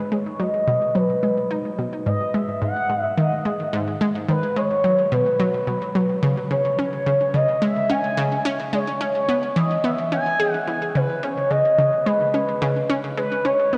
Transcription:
0.00 0.14 B4 loud
0.12 0.24 G#3 medium
0.12 0.41 C#5 loud
0.40 0.59 F#3 medium
0.40 0.96 D#5 loud
0.67 0.79 B2 medium
0.95 1.15 F#3 medium
0.95 1.78 B4 medium
1.23 1.43 G#3 medium
1.51 1.70 D#4 medium
1.79 2.05 B2 medium
2.06 2.18 G#2 medium
2.06 2.36 D#5 loud
2.34 2.54 G#3 medium
2.34 2.61 E5 medium
2.62 2.74 G#2 medium
2.62 3.02 F#5 loud
2.90 3.01 G#2 medium
3.02 3.14 E5 loud
3.17 3.44 D#3 medium
3.17 3.97 D#5 medium
3.45 3.65 G#3 medium
3.73 3.93 G#2 loud
4.01 4.13 G#3 medium
4.28 4.40 D#3 medium
4.28 4.58 B4 loud
4.56 4.68 G#3 medium
4.56 5.14 C#5 loud
4.84 5.04 F#3 medium
5.12 5.24 B2 loud
5.12 6.23 B4 loud
5.40 5.59 F#3 medium
5.67 5.94 B2 medium
5.95 6.15 F#3 medium
6.23 6.35 C#3 loud
6.51 6.63 C#3 medium
6.51 7.36 C#5 loud
6.79 6.98 C#4 medium
7.06 7.18 C#3 medium
7.34 7.46 C#3 medium
7.34 7.64 D#5 medium
7.62 7.88 G#3 medium
7.62 7.92 E5 loud
7.90 8.09 C#4 medium
7.90 8.46 G#5 loud
8.17 8.37 C#3 loud
8.45 8.57 C#4 loud
8.73 8.85 G#3 medium
8.73 9.58 C#5 medium
9.01 9.13 C#4 medium
9.29 9.48 B3 medium
9.56 9.68 E3 loud
9.56 9.86 D#5 medium
9.84 10.04 B3 medium
9.84 10.11 E5 loud
10.12 10.32 C#4 medium
10.12 10.52 G#5 loud
10.40 10.59 G#4 medium
10.52 10.64 F#5 loud
10.67 10.94 E3 medium
10.95 11.07 C#3 medium
10.95 11.24 B4 loud
11.23 11.43 C#4 medium
11.23 11.52 C#5 loud
11.50 11.63 C#3 medium
11.50 12.07 D#5 loud
11.78 11.90 C#3 medium
12.05 12.33 G#3 medium
12.05 12.89 B4 medium
12.34 12.54 C#4 medium
12.62 12.82 C#3 loud
12.90 13.01 C#4 medium
13.17 13.29 G#3 medium
13.17 13.47 B4 loud
13.45 13.57 C#4 medium
13.45 13.75 C#5 loud
13.73 13.78 B3 medium
13.73 13.78 A#4 loud

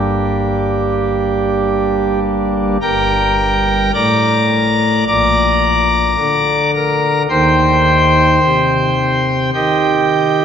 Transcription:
0.00 2.77 G1 soft
0.00 2.77 G2 soft
0.00 2.77 G3 soft
0.00 2.78 A#3 soft
0.00 2.77 D4 soft
0.00 2.19 G4 medium
2.81 3.91 G1 medium
2.81 3.91 G2 medium
2.81 3.91 A#4 medium
2.81 3.91 G5 medium
2.81 3.91 A#5 loud
3.93 5.04 A2 medium
3.93 5.04 D5 medium
3.93 5.04 A#5 medium
3.93 5.04 D6 loud
5.07 6.16 A#1 medium
5.07 6.16 A#2 medium
5.07 6.71 D5 medium
5.07 6.71 A#5 medium
5.07 6.71 D6 loud
6.18 7.27 D3 medium
6.75 7.23 A#4 medium
6.75 7.22 A#5 loud
7.29 8.39 D#2 medium
7.29 8.39 D#3 medium
7.29 9.50 C5 medium
7.29 9.50 G5 medium
7.29 9.50 C6 loud
8.43 9.51 C3 medium
9.54 10.45 D#3 medium
9.54 10.45 G4 medium
9.54 10.45 D#5 medium
9.54 10.45 G5 medium

